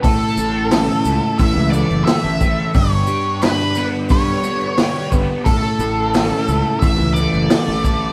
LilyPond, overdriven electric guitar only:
\new Staff \with { instrumentName = "Overdriven electric guitar" } { \time 4/4 \key a \mixolydian \tempo 4 = 88 a,8 a'8 cis'8 a8 e8 a8 a'8 a8 | g,8 g'8 d'8 b8 g8 b8 g'8 b8 | a,8 a'8 cis'8 a8 e8 a8 a'8 a8 | }